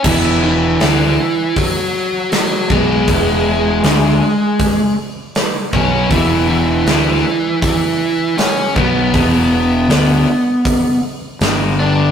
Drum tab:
CC |x-------|--------|--------|--------|
HH |--o-o-o-|o-o-o-o-|o-o-o-o-|o-o-o-o-|
SD |--o---o-|--o---o-|--o---o-|--o---o-|
BD |o---o--o|o---o--o|o---o--o|o---o---|